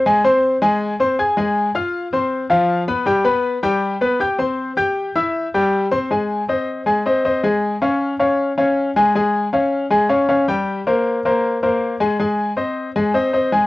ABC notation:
X:1
M:4/4
L:1/8
Q:1/4=158
K:Ab
V:1 name="Grand piano"
[A,Aa] [Ccc']2 [A,Aa]2 [Ccc'] [Aaa'] [A,Aa]- | [A,Aa] [Fff']2 [Ccc']2 [F,Ff]2 [=B,=B=b] | [G,Gg] [=B,=B=b]2 [G,Gg]2 [B,Bb] [Ggg'] [Ccc']- | [Ccc'] [Ggg']2 [=E=e=e']2 [G,Gg]2 [Ccc'] |
[A,Aa]2 [Cce]2 [A,Aa] [Cce] [Cce] [A,Aa]- | [A,Aa] [Ddf]2 [Ddf]2 [Ddf]2 [A,Aa] | [A,Aa]2 [Ddf]2 [A,Aa] [Ddf] [Ddf] [G,Gg]- | [G,Gg] [B,Bc]2 [B,Bc]2 [B,Bc]2 [A,Aa] |
[A,Aa]2 [Cce]2 [A,Aa] [Cce] [Cce] [A,Aa] |]